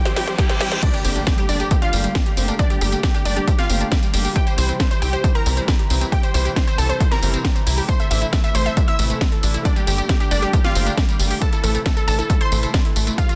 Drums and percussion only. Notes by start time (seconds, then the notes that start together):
0.05 snare, closed hi-hat
0.16 snare, open hi-hat
0.27 snare, closed hi-hat
0.38 kick, snare, closed hi-hat
0.49 snare, closed hi-hat
0.61 snare, open hi-hat
0.72 snare, closed hi-hat
0.83 kick, closed hi-hat, tambourine, crash
0.94 closed hi-hat, tambourine
1.05 open hi-hat, tambourine
1.16 closed hi-hat, tambourine
1.27 kick, snare, closed hi-hat, tambourine
1.38 closed hi-hat, tambourine
1.49 open hi-hat, tambourine
1.60 closed hi-hat, tambourine
1.71 kick, closed hi-hat, tambourine
1.82 closed hi-hat
1.93 open hi-hat, tambourine
2.04 closed hi-hat, tambourine
2.15 kick, snare, closed hi-hat, tambourine
2.26 closed hi-hat
2.37 open hi-hat, tambourine
2.48 closed hi-hat, tambourine
2.59 kick, closed hi-hat, tambourine
2.70 closed hi-hat, tambourine
2.81 open hi-hat, tambourine
2.92 closed hi-hat, tambourine
3.03 kick, snare, closed hi-hat, tambourine
3.14 closed hi-hat, tambourine
3.25 open hi-hat, tambourine
3.37 closed hi-hat, tambourine
3.48 kick, closed hi-hat, tambourine
3.59 snare, closed hi-hat
3.70 open hi-hat, tambourine
3.81 closed hi-hat, tambourine
3.92 kick, snare, closed hi-hat, tambourine
4.03 closed hi-hat, tambourine
4.14 open hi-hat, tambourine
4.25 open hi-hat, tambourine
4.36 kick, closed hi-hat, tambourine
4.47 closed hi-hat, tambourine
4.58 open hi-hat, tambourine
4.69 closed hi-hat, tambourine
4.80 kick, snare, closed hi-hat, tambourine
4.91 closed hi-hat, tambourine
5.02 open hi-hat, tambourine
5.13 closed hi-hat, tambourine
5.24 kick, closed hi-hat, tambourine
5.35 closed hi-hat
5.46 open hi-hat, tambourine
5.57 closed hi-hat, tambourine
5.68 kick, snare, closed hi-hat, tambourine
5.79 closed hi-hat
5.90 open hi-hat, tambourine
6.01 closed hi-hat, tambourine
6.12 kick, closed hi-hat, tambourine
6.23 closed hi-hat, tambourine
6.34 open hi-hat, tambourine
6.45 closed hi-hat, tambourine
6.56 kick, snare, closed hi-hat, tambourine
6.67 closed hi-hat, tambourine
6.78 open hi-hat, tambourine
6.90 closed hi-hat, tambourine
7.00 kick, closed hi-hat, tambourine
7.12 snare, closed hi-hat
7.23 open hi-hat, tambourine
7.34 closed hi-hat, tambourine
7.45 kick, snare, closed hi-hat, tambourine
7.56 closed hi-hat, tambourine
7.67 open hi-hat, tambourine
7.78 open hi-hat, tambourine
7.89 kick, closed hi-hat, tambourine
8.00 closed hi-hat, tambourine
8.11 open hi-hat, tambourine
8.22 closed hi-hat, tambourine
8.33 kick, snare, closed hi-hat, tambourine
8.44 closed hi-hat, tambourine
8.55 open hi-hat, tambourine
8.66 closed hi-hat, tambourine
8.77 kick, closed hi-hat, tambourine
8.88 closed hi-hat
8.99 open hi-hat, tambourine
9.10 closed hi-hat, tambourine
9.21 kick, snare, closed hi-hat, tambourine
9.32 closed hi-hat
9.43 open hi-hat, tambourine
9.54 closed hi-hat, tambourine
9.65 kick, closed hi-hat, tambourine
9.76 closed hi-hat, tambourine
9.87 open hi-hat, tambourine
9.98 closed hi-hat, tambourine
10.09 kick, snare, closed hi-hat, tambourine
10.20 closed hi-hat, tambourine
10.31 open hi-hat, tambourine
10.42 closed hi-hat, tambourine
10.53 kick, closed hi-hat, tambourine
10.64 snare, closed hi-hat
10.75 open hi-hat, tambourine
10.87 closed hi-hat, tambourine
10.98 kick, snare, closed hi-hat, tambourine
11.09 closed hi-hat, tambourine
11.20 open hi-hat, tambourine
11.31 open hi-hat, tambourine
11.42 kick, closed hi-hat, tambourine
11.53 closed hi-hat, tambourine
11.64 open hi-hat, tambourine
11.75 closed hi-hat, tambourine
11.86 kick, snare, closed hi-hat, tambourine
11.97 closed hi-hat, tambourine
12.08 open hi-hat, tambourine
12.19 closed hi-hat, tambourine
12.30 kick, closed hi-hat, tambourine
12.41 closed hi-hat
12.52 open hi-hat, tambourine
12.63 closed hi-hat, tambourine
12.74 kick, snare, closed hi-hat, tambourine
12.85 closed hi-hat
12.96 open hi-hat, tambourine
13.07 closed hi-hat, tambourine
13.18 kick, closed hi-hat, tambourine
13.29 closed hi-hat, tambourine